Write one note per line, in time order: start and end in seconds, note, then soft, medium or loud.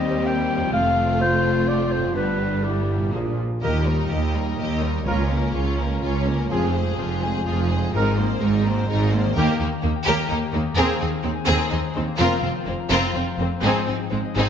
0.00 0.71 D#2 medium
0.00 0.66 D#3 medium
0.00 0.74 G3 medium
0.00 0.59 C4 soft
0.00 0.73 C4 medium
0.00 2.12 C4 soft
0.00 0.71 G4 medium
0.00 0.71 G4 soft
0.00 2.16 C5 soft
0.00 0.28 D#5 medium
0.27 0.73 G5 medium
0.56 2.09 F2 medium
0.60 2.12 C4 soft
0.65 2.14 F4 medium
0.70 1.20 A3 medium
0.70 2.13 F4 medium
0.70 2.16 A4 soft
0.70 1.23 F5 medium
0.74 2.14 F1 medium
0.74 2.14 F2 medium
0.74 2.16 A3 medium
1.21 2.17 F4 medium
1.21 1.70 C5 medium
1.68 1.93 D5 medium
1.92 2.15 C5 medium
1.97 3.06 G2 medium
2.02 3.08 B3 soft
2.06 3.03 D4 soft
2.11 3.13 G4 soft
2.15 3.11 G1 medium
2.15 3.11 G2 medium
2.15 3.12 G3 soft
2.15 3.11 B3 soft
2.15 2.64 D4 medium
2.15 3.40 D4 soft
2.15 2.65 B4 medium
2.63 3.12 E4 medium
2.63 3.14 G4 medium
2.95 3.56 A#2 soft
3.00 4.93 A#3 soft
3.04 3.60 D4 soft
3.08 3.20 A#3 soft
3.08 3.62 F4 soft
3.13 3.42 A#1 soft
3.13 3.42 A#2 soft
3.13 3.43 F3 soft
3.13 3.38 D4 soft
3.13 3.62 G#4 medium
3.61 4.05 D#2 medium
3.61 5.08 D#3 medium
3.61 3.79 A#3 medium
3.61 3.85 A#3 soft
3.61 3.84 G4 soft
3.61 3.79 G4 medium
3.61 3.79 A#4 medium
3.61 3.85 D#5 medium
3.75 4.81 D#4 soft
3.85 4.11 G3 medium
3.85 4.10 D#4 soft
3.85 4.69 G4 soft
3.85 4.11 A#4 medium
3.98 4.57 A#4 soft
4.09 4.53 D#2 soft
4.09 4.53 D#2 medium
4.09 4.35 A#3 soft
4.09 4.34 G4 soft
4.09 4.34 D#5 soft
4.09 4.46 D#5 soft
4.22 5.08 G5 soft
4.34 4.59 G3 soft
4.34 4.58 D#4 soft
4.34 4.59 A#4 soft
4.34 5.77 A#5 soft
4.47 5.08 D#5 soft
4.58 5.01 D#2 medium
4.58 4.81 A#3 soft
4.58 4.81 G4 soft
4.58 5.42 A#4 soft
4.58 4.81 D#5 medium
4.70 5.08 G4 soft
4.81 5.06 G3 soft
4.81 5.06 D#4 soft
4.81 5.08 D#4 soft
4.81 5.06 A#4 soft
4.94 5.17 A#3 soft
5.05 5.49 C#2 medium
5.05 6.52 C#3 medium
5.05 5.24 A#3 medium
5.05 5.29 C#4 medium
5.05 5.28 F4 soft
5.05 5.23 F4 medium
5.05 5.23 A#4 medium
5.05 5.28 C#5 soft
5.18 6.14 A#3 soft
5.28 5.54 A#3 soft
5.28 5.54 C#4 soft
5.28 5.53 F4 soft
5.28 5.53 A#4 soft
5.43 5.89 A#4 soft
5.53 5.97 C#2 medium
5.53 5.78 C#4 soft
5.53 5.78 F4 medium
5.53 6.02 F4 soft
5.53 5.78 C#5 soft
5.66 7.09 F5 soft
5.78 6.02 A#3 medium
5.78 6.02 C#4 soft
5.78 6.02 A#4 soft
5.78 6.52 A#5 medium
5.90 6.52 A#4 soft
6.01 6.45 C#2 medium
6.01 6.25 C#4 medium
6.01 6.24 F4 soft
6.01 6.73 F4 soft
6.01 6.25 C#5 medium
6.15 6.38 A#3 soft
6.25 6.50 A#3 medium
6.25 6.50 C#4 soft
6.25 6.53 C#4 soft
6.25 6.51 A#4 soft
6.39 6.53 A#3 soft
6.49 6.93 F1 medium
6.49 6.92 F2 medium
6.49 7.96 F2 medium
6.49 6.72 F3 medium
6.49 6.67 C4 medium
6.49 6.72 F4 soft
6.49 6.67 F4 medium
6.49 6.72 G#4 medium
6.49 6.67 G#4 medium
6.62 7.68 C4 medium
6.73 6.98 G#3 soft
6.73 7.56 F4 soft
6.73 6.98 G#4 soft
6.73 6.98 C5 medium
6.87 7.45 G#4 medium
6.96 7.41 F1 medium
6.96 7.40 F2 medium
6.96 7.21 F3 soft
6.96 7.22 F4 medium
6.96 7.21 G#4 soft
6.96 7.33 C5 medium
7.10 7.96 F5 soft
7.21 7.46 G#3 soft
7.21 7.46 G#4 medium
7.21 7.46 C5 medium
7.21 9.38 G#5 medium
7.35 8.40 C5 medium
7.45 7.88 F1 medium
7.45 7.88 F2 medium
7.45 7.68 F3 medium
7.45 7.68 F4 soft
7.45 7.68 G#4 medium
7.45 9.38 G#4 soft
7.58 7.96 F4 soft
7.69 7.93 G#3 soft
7.69 8.05 C4 soft
7.69 7.94 G#4 soft
7.69 7.94 C5 medium
7.82 7.96 C3 soft
7.92 8.36 G#1 medium
7.92 9.38 G#2 medium
7.92 8.36 G#2 medium
7.92 8.16 G#3 medium
7.92 8.11 C4 medium
7.92 8.16 D#4 medium
7.92 8.11 D#4 medium
7.92 8.15 A#4 medium
7.92 8.11 A#4 medium
8.06 9.12 C4 medium
8.16 8.42 A#3 medium
8.16 8.42 C4 soft
8.16 9.01 D#4 soft
8.16 8.41 C5 medium
8.29 8.89 A#4 soft
8.40 8.84 G#1 medium
8.40 8.83 G#2 medium
8.40 8.66 G#3 medium
8.40 8.65 D#4 medium
8.40 8.65 A#4 medium
8.40 8.77 C5 medium
8.54 12.22 D#5 medium
8.65 8.89 A#3 medium
8.65 8.89 C4 medium
8.65 8.89 C5 medium
8.65 10.06 A#5 medium
8.78 9.38 C5 medium
8.88 9.31 G#1 medium
8.88 9.31 G#2 medium
8.88 9.11 G#3 medium
8.88 9.11 D#4 medium
8.88 9.10 A#4 medium
8.88 9.71 A#4 medium
9.02 10.52 D#4 soft
9.12 9.36 A#3 medium
9.12 9.36 C4 soft
9.12 9.38 C4 soft
9.12 9.36 C5 medium
9.25 9.36 D#3 soft
9.35 9.44 D#2 medium
9.35 10.75 D#3 medium
9.35 9.53 A#3 medium
9.35 9.59 A#3 medium
9.35 9.53 D#4 medium
9.35 9.58 G4 medium
9.35 9.53 G4 medium
9.35 9.57 A#4 medium
9.49 10.41 A#3 medium
9.58 9.68 D#2 medium
9.58 9.68 D#2 soft
9.58 9.69 A#3 medium
9.58 9.66 D#4 medium
9.58 9.67 G4 medium
9.58 9.82 G4 medium
9.72 10.18 A#4 medium
9.82 9.92 D#2 medium
9.82 9.90 A#3 medium
9.82 9.93 A#3 medium
9.82 9.91 D#4 soft
9.82 10.29 G4 medium
9.96 10.79 G5 medium
10.05 10.15 D#2 medium
10.05 10.16 D#2 medium
10.05 10.29 A#3 medium
10.05 10.28 G4 medium
10.05 10.29 A#4 medium
10.05 11.46 A#5 medium
10.19 11.10 A#4 medium
10.28 10.39 D#2 medium
10.28 10.39 A#3 medium
10.28 10.36 D#4 medium
10.28 10.79 G4 medium
10.28 10.39 G4 medium
10.42 10.64 A#3 medium
10.52 10.62 D#2 medium
10.52 10.63 D#2 medium
10.52 10.60 A#3 medium
10.52 10.62 A#3 medium
10.52 12.22 D#4 medium
10.52 10.61 D#4 medium
10.65 12.06 A#3 medium
10.76 10.85 D#2 medium
10.76 10.86 D#2 medium
10.76 12.21 D#3 medium
10.76 10.94 A#3 medium
10.76 10.99 C4 medium
10.76 10.94 C4 medium
10.76 10.98 G#4 medium
10.76 10.93 G#4 medium
10.76 10.99 A#4 medium
10.88 11.94 C4 medium
10.99 11.09 D#2 medium
10.99 11.09 C4 medium
10.99 11.07 D#4 medium
10.99 11.82 G#4 medium
10.99 11.09 G#4 medium
11.11 11.70 A#4 medium
11.23 11.32 D#2 medium
11.23 11.33 D#2 medium
11.23 11.31 C4 medium
11.23 11.32 C4 medium
11.23 11.31 D#4 medium
11.23 11.58 C5 medium
11.35 12.21 G#5 medium
11.46 11.56 D#2 medium
11.46 11.56 D#2 loud
11.46 11.70 C4 medium
11.46 11.69 G#4 medium
11.46 11.70 A#4 medium
11.46 12.78 A#5 medium
11.59 12.54 C5 medium
11.69 11.80 D#2 medium
11.69 11.79 C4 medium
11.69 11.77 D#4 medium
11.69 11.79 G#4 medium
11.69 12.42 A#4 medium
11.83 12.21 G#4 soft
11.94 12.04 D#2 medium
11.94 12.02 C4 medium
11.94 13.50 C4 medium
11.94 12.03 C4 medium
11.94 12.04 D#4 medium
12.07 13.64 A#3 medium
12.17 12.28 F1 medium
12.17 12.27 F2 medium
12.17 13.64 F3 medium
12.17 12.37 A#3 medium
12.17 12.42 C4 medium
12.17 12.37 C4 medium
12.17 12.41 F4 medium
12.17 12.36 F4 medium
12.17 12.42 A#4 medium
12.31 13.38 F4 medium
12.41 12.51 F1 medium
12.41 12.51 F2 medium
12.41 12.49 C4 medium
12.41 12.52 C4 medium
12.41 12.51 F4 medium
12.41 13.25 A#4 medium
12.56 13.14 C5 medium
12.66 12.75 F1 medium
12.66 12.74 F2 medium
12.66 12.74 A#3 medium
12.66 12.75 C4 medium
12.66 13.02 F5 medium
12.80 13.65 A#5 medium
12.90 12.99 F1 medium
12.90 12.98 F2 medium
12.90 13.14 C4 medium
12.90 13.13 F4 medium
12.90 13.13 A#4 medium
12.90 14.49 C6 medium
13.04 13.65 F5 medium
13.14 13.23 F1 medium
13.14 13.23 F2 medium
13.14 13.22 C4 soft
13.14 13.24 C4 medium
13.14 13.23 F4 medium
13.14 14.11 C5 medium
13.27 13.64 A#4 medium
13.38 13.46 F1 medium
13.38 13.48 F2 medium
13.38 13.46 A#3 medium
13.38 13.47 C4 medium
13.38 13.48 C4 medium
13.38 13.65 F4 soft
13.52 13.74 C4 soft
13.62 13.70 G#1 medium
13.62 13.71 G#2 medium
13.62 14.49 G#2 medium
13.62 13.79 G#3 medium
13.62 13.85 C4 medium
13.62 13.79 C4 medium
13.62 13.85 D#4 medium
13.62 13.85 G#4 medium
13.62 13.80 G#4 medium
13.75 14.49 C4 soft
13.86 13.94 G#1 soft
13.86 13.95 G#2 medium
13.86 13.95 C4 soft
13.86 13.96 C4 soft
13.86 13.95 D#4 medium
13.86 14.49 D#4 soft
13.99 14.49 G#4 soft
14.11 14.19 G#1 soft
14.11 14.20 G#2 medium
14.11 14.19 G#3 soft
14.11 14.19 C4 medium
14.11 14.20 C4 medium
14.11 14.48 C5 medium
14.25 14.49 D#5 soft
14.36 14.44 G#1 medium
14.36 14.44 G#2 medium
14.36 14.49 C4 medium
14.36 14.49 D#4 medium
14.36 14.49 G#4 medium
14.36 14.49 G#5 medium